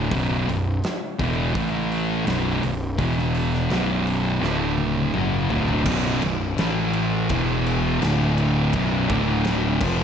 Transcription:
0.00 0.11 D2 medium
0.00 0.10 A2 medium
0.00 0.11 D3 loud
0.10 0.45 B0 medium
0.10 0.45 B1 medium
0.10 0.46 F#2 loud
0.10 0.46 B2 loud
0.10 kick loud
0.10 open hi-hat medium
0.47 0.81 B0 medium
0.47 0.76 B1 medium
0.47 0.76 F#2 medium
0.47 open hi-hat medium
0.84 snare loud
0.84 open hi-hat medium
1.19 1.52 E1 medium
1.19 1.54 E2 medium
1.19 1.54 B2 loud
1.19 1.54 E3 loud
1.19 kick loud
1.19 open hi-hat medium
1.54 2.23 A1 medium
1.54 2.25 A2 medium
1.54 2.26 E3 medium
1.54 2.26 A3 loud
1.54 kick loud
1.54 open hi-hat medium
1.92 open hi-hat medium
2.25 2.60 B0 medium
2.25 2.61 B1 medium
2.25 2.61 F#2 medium
2.25 2.62 B2 loud
2.25 snare loud
2.25 open hi-hat medium
2.62 2.96 B0 medium
2.62 2.91 B1 medium
2.62 2.91 F#2 medium
2.62 open hi-hat medium
2.98 3.67 E1 medium
2.98 3.69 E2 medium
2.98 3.70 B2 medium
2.98 3.70 E3 loud
2.98 kick loud
2.98 open hi-hat medium
3.18 snare soft
3.35 open hi-hat medium
3.54 snare soft
3.70 4.39 B0 medium
3.70 4.41 B1 medium
3.70 4.42 F#2 medium
3.70 4.42 B2 medium
3.70 snare loud
3.70 open hi-hat medium
4.07 open hi-hat medium
4.41 5.10 D1 medium
4.41 5.13 D2 medium
4.41 5.13 A2 loud
4.41 5.13 D3 loud
4.41 snare medium
4.78 high tom medium
4.96 high tom medium
5.13 5.48 F#1 medium
5.13 5.49 F#2 medium
5.13 5.50 C#3 loud
5.13 5.50 F#3 medium
5.13 mid tom medium
5.50 5.84 D1 medium
5.50 5.84 D2 loud
5.50 5.85 A2 loud
5.50 5.85 D3 loud
5.50 floor tom loud
5.68 floor tom medium
5.84 6.20 B0 loud
5.84 6.20 B1 loud
5.84 6.20 F#2 loud
5.84 6.21 B2 loud
5.84 kick loud
5.84 crash loud
5.84 crash medium
6.21 6.56 B0 medium
6.21 6.51 B1 medium
6.21 6.51 F#2 medium
6.21 crash medium
6.57 7.27 A1 loud
6.57 7.28 A2 medium
6.57 7.29 E3 loud
6.57 7.29 A3 loud
6.57 snare loud
6.57 crash medium
6.93 crash medium
7.29 7.98 E1 medium
7.29 7.99 E2 loud
7.29 8.01 B2 loud
7.29 8.01 E3 loud
7.29 kick loud
7.29 crash medium
7.66 crash medium
8.00 8.70 D1 loud
8.00 8.71 D2 loud
8.00 8.72 A2 medium
8.00 8.72 D3 loud
8.00 snare loud
8.00 crash medium
8.38 crash medium
8.73 9.07 B0 loud
8.73 9.08 B1 loud
8.73 9.08 F#2 loud
8.73 9.09 B2 loud
8.73 kick loud
8.73 crash medium
9.09 9.77 D1 medium
9.09 9.80 D2 loud
9.09 9.81 A2 loud
9.09 9.81 D3 loud
9.09 kick loud
9.09 crash medium
9.45 snare loud
9.45 crash medium
9.80 10.04 F1 loud
9.80 10.04 F2 loud
9.80 10.04 C3 loud
9.80 10.04 F3 loud
9.80 kick loud
9.80 crash loud
10.00 snare soft

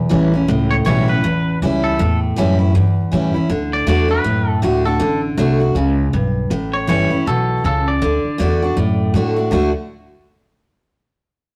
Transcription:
0.00 0.10 B1 medium
0.00 0.46 E2 medium
0.09 0.48 A1 loud
0.09 0.32 E3 medium
0.09 0.32 G3 medium
0.09 0.33 C#4 medium
0.09 0.32 E4 medium
0.34 0.49 C#4 medium
0.34 0.48 E4 medium
0.48 0.85 C#2 loud
0.48 1.21 A2 loud
0.71 0.76 C#5 loud
0.85 1.23 B1 loud
0.85 1.07 E3 medium
0.85 1.08 G3 loud
0.85 1.08 C#4 medium
0.85 1.07 E4 loud
0.85 1.09 C#5 loud
1.08 1.24 C#4 medium
1.08 1.23 E4 medium
1.08 1.58 B4 medium
1.24 1.61 A1 medium
1.24 1.96 E2 medium
1.62 1.98 C#2 medium
1.62 1.98 E3 medium
1.62 1.98 G3 medium
1.62 1.99 C#4 medium
1.62 1.99 E4 medium
1.84 2.19 A4 medium
1.99 2.36 E2 medium
1.99 2.71 A2 medium
2.36 2.74 F#2 loud
2.36 2.58 E3 medium
2.36 2.59 G3 medium
2.36 2.59 C#4 loud
2.36 2.57 E4 loud
2.59 2.74 C#4 soft
2.59 2.73 E4 medium
2.75 3.47 E2 medium
2.75 3.11 G2 medium
3.12 3.33 A2 medium
3.12 3.33 E3 medium
3.12 3.34 G3 medium
3.12 3.34 C#4 medium
3.12 3.33 E4 medium
3.34 3.50 C#4 soft
3.34 3.49 E4 medium
3.34 muted upright bass stroke soft
3.49 3.86 D2 medium
3.49 3.85 D3 medium
3.73 3.88 D5 loud
3.87 4.23 E2 medium
3.87 4.08 D3 loud
3.87 4.09 A3 loud
3.87 4.09 D4 loud
3.87 4.07 F#4 loud
3.87 4.10 D5 loud
4.08 4.25 D4 medium
4.08 4.24 F#4 medium
4.08 4.59 B4 medium
4.24 4.61 F#2 medium
4.24 4.97 A2 medium
4.62 4.99 D2 medium
4.62 4.84 D3 medium
4.62 4.84 A3 medium
4.62 4.84 D4 medium
4.62 4.84 F#4 medium
4.85 5.00 D4 medium
4.85 5.00 F#4 medium
4.85 5.20 A4 medium
5.00 5.37 A1 medium
5.00 5.36 D3 medium
5.37 5.74 C2 loud
5.37 5.59 D3 medium
5.37 5.59 A3 loud
5.37 5.60 D4 medium
5.37 5.58 F#4 loud
5.60 5.76 D4 soft
5.60 5.75 F#4 medium
5.75 6.12 C#2 medium
5.75 6.12 C#3 medium
6.13 6.50 B1 loud
6.13 6.49 G2 medium
6.50 6.87 A1 medium
6.50 7.23 A2 medium
6.74 6.88 C#5 medium
6.87 7.09 G1 medium
6.87 7.10 E3 medium
6.87 7.10 G3 medium
6.87 7.10 C#4 loud
6.87 7.09 E4 loud
6.87 7.28 C#5 medium
7.10 7.27 C#4 medium
7.10 7.25 E4 medium
7.10 muted upright bass stroke soft
7.26 7.63 B1 medium
7.26 7.63 B2 medium
7.26 7.64 A4 medium
7.64 8.01 C#2 medium
7.64 8.01 C#3 medium
7.64 7.88 A4 medium
7.88 9.11 D5 loud
8.02 8.23 D2 medium
8.02 8.37 D3 loud
8.24 muted upright bass stroke soft
8.38 8.76 E2 medium
8.38 8.60 D3 medium
8.38 8.61 A3 loud
8.38 8.61 D4 loud
8.38 8.61 F#4 medium
8.62 8.78 D4 soft
8.62 8.77 F#4 medium
8.77 9.13 F#2 medium
8.77 9.49 A2 medium
9.14 9.51 A2 medium
9.14 9.36 D3 medium
9.14 9.36 A3 medium
9.14 9.37 D4 medium
9.14 9.35 F#4 medium
9.36 9.52 D4 soft
9.36 9.51 F#4 medium
9.51 9.73 D2 medium
9.51 9.69 D3 medium
9.51 9.70 A3 medium
9.51 9.70 D4 loud
9.51 9.70 F#4 medium

